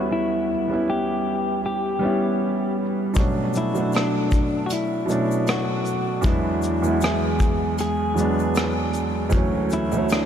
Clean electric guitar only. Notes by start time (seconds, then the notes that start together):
0.12 E4
0.90 G4
1.66 G4
3.58 E4
3.95 D4
4.66 F#4
4.72 E4
5.50 F#4
6.26 E4
7.04 G#4
7.81 G#4
9.73 E4
10.12 D4